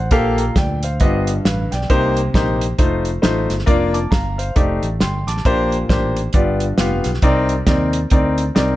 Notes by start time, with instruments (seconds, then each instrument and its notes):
Already playing: grand piano C5 F#5
0.11 fingered electric bass A#1, grand piano A#2 A#3 G4 A4 F5, kick, closed hi-hat
0.38 grand piano F5 A#5, closed hi-hat
0.56 fingered electric bass D2, grand piano D5 G5, kick, snare, closed hi-hat
0.83 grand piano C5 F5, closed hi-hat
1.00 fingered electric bass G1, grand piano G2 B3 F4 G4 D#5, kick, closed hi-hat
1.27 closed hi-hat
1.45 fingered electric bass A1, grand piano B4 F5, snare, closed hi-hat
1.72 fingered electric bass B1, grand piano D5 G5, snare, closed hi-hat
1.81 snare
1.90 fingered electric bass C2, grand piano C3 A#3 D#4 G4 C5, kick, closed hi-hat
2.17 closed hi-hat
2.34 fingered electric bass A#1, grand piano A#3 D#4 G4 C5, kick, snare, closed hi-hat
2.61 closed hi-hat
2.78 fingered electric bass F1, grand piano A3 D#4 F4 C5, kick, closed hi-hat
3.05 closed hi-hat
3.22 fingered electric bass A1, grand piano A3 D#4 F4 C5, snare, closed hi-hat
3.50 fingered electric bass G1, snare, closed hi-hat
3.59 snare
3.66 fingered electric bass F1, grand piano A#3 D4 F4 D5, kick, closed hi-hat
3.94 grand piano A5 D6, closed hi-hat
4.11 fingered electric bass G1, grand piano F5 A#5, kick, snare, closed hi-hat
4.38 grand piano C5 F5, closed hi-hat
4.56 fingered electric bass F1, grand piano A3 D#4 G4 D5, kick, closed hi-hat
4.83 fingered electric bass A1, closed hi-hat
5.00 fingered electric bass G1, grand piano G5 C6, snare, closed hi-hat
5.27 fingered electric bass A1, grand piano A5 D6, snare, closed hi-hat
5.37 snare
5.45 fingered electric bass A#1, grand piano A#2 A#3 D4 G4 C5, kick, closed hi-hat
5.72 closed hi-hat
5.89 fingered electric bass A1, grand piano A#3 D4 G4 C5, kick, snare, closed hi-hat
6.17 closed hi-hat
6.33 fingered electric bass G1, grand piano G2 B3 F4 G4 D5, kick, closed hi-hat
6.60 closed hi-hat
6.78 fingered electric bass F1, grand piano B3 F4 G4 F5, snare, closed hi-hat
7.04 fingered electric bass B1, snare, closed hi-hat
7.14 snare
7.22 fingered electric bass C2, grand piano C3 C4 D#4 A#4 D5, kick, closed hi-hat
7.49 closed hi-hat
7.67 fingered electric bass D#2, grand piano C4 D#4 A#4 D5, kick, snare, closed hi-hat
7.93 closed hi-hat
8.10 fingered electric bass D2, grand piano C4 D#4 A#4 D5, kick, closed hi-hat
8.38 closed hi-hat
8.55 fingered electric bass C2, grand piano C4 D#4 A#4 D5, snare, closed hi-hat